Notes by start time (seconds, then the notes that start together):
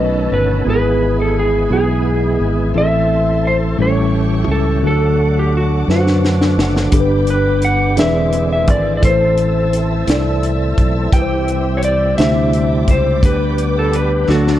Already playing: B1 B2 D#3 A3 B3 C#4 D#4 F#4 A4 B4 C#5 D#5 A5 B5
0.32 G1 B4
0.63 G#1 G#2 E3 G#3 B3 E4 G#4 B4 E5 G#5
0.68 F#4 B4
0.74 G#4
1.22 A4
1.40 G#4
1.70 B1 B3 E4 G#4
2.40 G#1
2.74 A1 A2 A3 C4 E4 G#4 A4 C5 E5 A5 C6
2.84 A4
3.47 C5
3.78 A1 A2 G3 A3 C#4 E4 G4 A4 G5 C#6
3.82 C#5
4.48 C#2 A4
4.82 D2 D3 F#3 D4 F#4 A4 D5 F#5 D6
4.87 A4
5.39 G4
5.57 F#4
5.87 F#2 D4 F#4 B4, snare
5.91 F#4
5.96 C5
6.07 snare
6.25 snare
6.42 snare
6.57 F#1, snare
6.76 snare
6.91 G1 G2 G3 B3 D4 G4 A4 B5, kick, closed hi-hat
7.00 B4
7.27 B4, closed hi-hat
7.62 F#5, closed hi-hat
7.96 E1 E3 G#3 C4 E4 G#4 B4 D5 E5 G#5, snare, closed hi-hat
8.32 closed hi-hat
8.52 E5
8.67 G#1 D5, kick, closed hi-hat
8.97 E4 D5 E6
9.02 A1 A2 E3 A3 C4 A4 B4 C5 A5, kick, closed hi-hat
9.10 C5
9.37 closed hi-hat
9.73 closed hi-hat
10.07 C2 E4 A4 D5, snare, closed hi-hat
10.43 closed hi-hat
10.78 B1, kick, closed hi-hat
11.13 C2 C3 G3 C4 E4 G4 B4 G5, kick, closed hi-hat
11.22 C5
11.48 closed hi-hat
11.77 C#5
11.82 D5, closed hi-hat
12.17 D2 C3 A3 D4 E4 G4 C5 E5 D6, snare, closed hi-hat
12.53 closed hi-hat
12.87 C#2 C5, kick, closed hi-hat
13.22 D2 D3 B3 D4 G4 B4 D5 B5, kick, closed hi-hat
13.58 closed hi-hat
13.79 A4
13.85 A#4
13.92 B4, closed hi-hat
14.26 D2 D3 F#3 A3 D4 F#4 A4 F#5 A5, snare
14.30 F#4 A4
14.47 snare